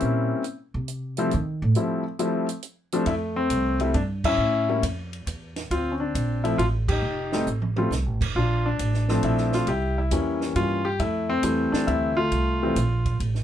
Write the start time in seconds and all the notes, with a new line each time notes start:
Already playing: G3 A#3 C4 C#4 E4
0.00 A#2, closed hi-hat
0.44 closed hi-hat
0.74 C3
0.88 closed hi-hat
1.17 F3 G3 A3 C4 E4, closed hi-hat
1.31 D#3, closed hi-hat
1.62 A2
1.75 F3 G3 A3 C4 E4, closed hi-hat
2.19 F3 G3 A3 C4 E4, closed hi-hat
2.49 closed hi-hat
2.63 closed hi-hat
2.92 F3 G3 A3 C4 D4, closed hi-hat
3.06 F2 A3 E4, kick, ride
3.36 C4
3.50 C2, kick, hi-hat pedal, ride
3.80 G3 A3 C4 E4, ride
3.94 G2 D4, ride
4.24 C#4 E4, kick, crash
4.38 A2
4.69 G3 A#3 C#4 E4
4.83 F2, kick, hi-hat pedal, ride
5.13 ride
5.26 E2, kick, hi-hat pedal, ride
5.56 snare, ride
5.71 D2 C4 F4, kick, ride
5.92 C#4
6.00 D4
6.15 A#1, kick, hi-hat pedal, ride
6.44 F3 A3 C4 E4, ride
6.58 A1 F4, kick, ride
6.88 D#4 G4, kick, crash
7.02 F1
7.32 G3 A3 C4 D#4, snare
7.47 A1, hi-hat pedal, high tom
7.62 mid tom
7.76 G3 A3 C4 F4, mid tom
7.91 C2, snare, hi-hat pedal
8.06 A1
8.21 F1, kick, crash
8.35 A#1 D4 F4, kick
8.66 D4
8.79 A1, kick, hi-hat pedal, ride
8.94 snare
9.08 F3 A3 C4 D4, snare
9.23 A#1 E4, kick, ride
9.38 snare
9.52 F4, snare
9.67 C2 E4 G4, kick, ride
9.98 E4
10.11 E2 E3 G3 A#3 C#4, kick, hi-hat pedal, ride
10.41 snare
10.55 G2 F4, kick, ride
10.85 G4
10.99 F2 A3 E4, kick, ride
11.30 C4
11.43 E2 E3 G3 A3 C4, kick, hi-hat pedal, ride
11.72 D4, muted upright bass stroke, snare
11.87 D2 E4, kick, ride
12.17 A3 F4
12.31 C2, kick, ride
12.63 E3 G3 A3 C4
12.76 A#1, kick, hi-hat pedal, ride
13.06 kick, ride
13.20 A1, kick, ride
13.35 snare